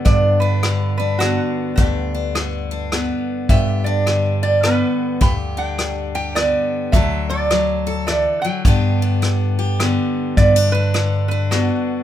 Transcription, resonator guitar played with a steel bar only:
X:1
M:3/4
L:1/8
Q:"Swing" 1/4=105
K:G
V:1 name="Resonator guitar played with a steel bar"
d B2 B F2 | G4- G z | e d2 d B2 | b g2 g d2 |
e d3 d g- | g4 z2 | d B2 B F2 |]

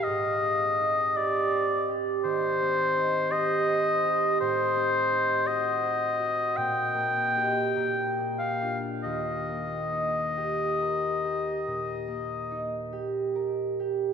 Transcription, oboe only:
X:1
M:4/4
L:1/16
Q:1/4=54
K:Eb
V:1 name="Oboe"
e4 d3 z c4 e4 | c4 e4 g6 f2 | e12 z4 |]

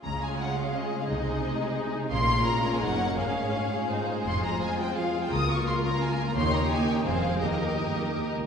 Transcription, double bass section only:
X:1
M:3/4
L:1/8
Q:1/4=170
K:Db
V:1 name="Double bass section" clef=bass
D,,2 z4 | C,,2 z4 | B,,,2 z2 G,,,2 | A,,,2 z4 |
[K:Ebmix] F,,,2 z4 | D,,2 z4 | E,,2 z2 F,,,2 | E,,2 z4 |]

